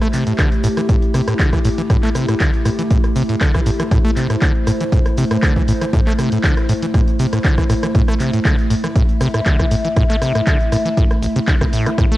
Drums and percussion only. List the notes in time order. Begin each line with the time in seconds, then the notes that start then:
0.02 cross-stick, closed hi-hat, cabasa
0.13 clap, open hi-hat, cabasa
0.27 closed hi-hat, cabasa
0.39 kick, cross-stick, clap, closed hi-hat, cabasa
0.52 closed hi-hat, cabasa
0.64 open hi-hat, cabasa
0.77 cross-stick, closed hi-hat, cabasa
0.89 kick, closed hi-hat, cabasa
1.02 closed hi-hat, cabasa
1.14 cross-stick, open hi-hat, cabasa
1.28 cross-stick, closed hi-hat, cabasa
1.39 kick, clap, closed hi-hat, cabasa
1.53 kick, cross-stick, closed hi-hat, cabasa
1.65 open hi-hat, cabasa
1.78 closed hi-hat, cabasa
1.90 kick, cross-stick, closed hi-hat, cabasa
2.03 clap, closed hi-hat, cabasa
2.15 cross-stick, open hi-hat, cabasa
2.28 cross-stick, closed hi-hat, cabasa
2.40 kick, clap, closed hi-hat, cabasa
2.54 closed hi-hat, cabasa
2.65 cross-stick, open hi-hat, cabasa
2.79 closed hi-hat, cabasa
2.91 kick, closed hi-hat, cabasa
3.04 cross-stick, closed hi-hat, cabasa
3.16 open hi-hat, cabasa
3.29 closed hi-hat, cabasa
3.41 kick, cross-stick, clap, closed hi-hat, cabasa
3.55 kick, cross-stick, closed hi-hat, cabasa
3.66 open hi-hat, cabasa
3.80 cross-stick, closed hi-hat, cabasa
3.91 kick, cross-stick, closed hi-hat, cabasa
4.05 closed hi-hat, cabasa
4.17 clap, open hi-hat, cabasa
4.30 cross-stick, closed hi-hat, cabasa
4.42 kick, clap, closed hi-hat, cabasa
4.55 closed hi-hat, cabasa
4.67 cross-stick, open hi-hat, cabasa
4.81 closed hi-hat, cabasa
4.92 kick, closed hi-hat, cabasa
5.06 cross-stick, closed hi-hat, cabasa
5.18 open hi-hat, cabasa
5.31 cross-stick, closed hi-hat, cabasa
5.43 kick, cross-stick, clap, closed hi-hat, cabasa
5.56 kick, closed hi-hat, cabasa
5.68 open hi-hat, cabasa
5.81 cross-stick, closed hi-hat, cabasa
5.93 kick, closed hi-hat, cabasa
6.07 clap, closed hi-hat, cabasa
6.18 cross-stick, open hi-hat, cabasa
6.32 closed hi-hat, cabasa
6.44 kick, clap, closed hi-hat, cabasa
6.57 cross-stick, closed hi-hat, cabasa
6.69 open hi-hat, cabasa
6.82 closed hi-hat, cabasa
6.94 kick, cross-stick, closed hi-hat, cabasa
7.08 closed hi-hat, cabasa
7.19 open hi-hat, cabasa
7.33 cross-stick, closed hi-hat, cabasa
7.44 kick, clap, closed hi-hat, cabasa
7.58 kick, cross-stick, closed hi-hat, cabasa
7.70 cross-stick, open hi-hat, cabasa
7.83 cross-stick, closed hi-hat, cabasa
7.95 kick, closed hi-hat, cabasa
8.08 cross-stick, closed hi-hat, cabasa
8.20 clap, open hi-hat, cabasa
8.34 closed hi-hat, cabasa
8.45 kick, cross-stick, clap, closed hi-hat, cabasa
8.59 closed hi-hat, cabasa
8.71 open hi-hat, cabasa
8.84 cross-stick, closed hi-hat, cabasa
8.96 kick, closed hi-hat, cabasa
9.09 closed hi-hat, cabasa
9.21 cross-stick, open hi-hat, cabasa
9.34 cross-stick, closed hi-hat, cabasa
9.46 kick, clap, closed hi-hat, cabasa
9.59 kick, cross-stick, closed hi-hat, cabasa
9.71 open hi-hat, cabasa
9.85 closed hi-hat, cabasa
9.96 kick, cross-stick, closed hi-hat, cabasa
10.10 clap, closed hi-hat, cabasa
10.22 cross-stick, open hi-hat, cabasa
10.35 cross-stick, closed hi-hat, cabasa
10.47 kick, clap, closed hi-hat, cabasa
10.60 closed hi-hat, cabasa
10.72 cross-stick, open hi-hat, cabasa
10.86 closed hi-hat, cabasa
10.97 kick, closed hi-hat, cabasa
11.11 cross-stick, closed hi-hat, cabasa
11.23 open hi-hat, cabasa
11.36 closed hi-hat, cabasa
11.48 kick, cross-stick, clap, closed hi-hat, cabasa
11.61 kick, cross-stick, closed hi-hat, cabasa
11.73 open hi-hat, cabasa
11.86 cross-stick, closed hi-hat, cabasa
11.98 kick, cross-stick, closed hi-hat, cabasa
12.12 closed hi-hat, cabasa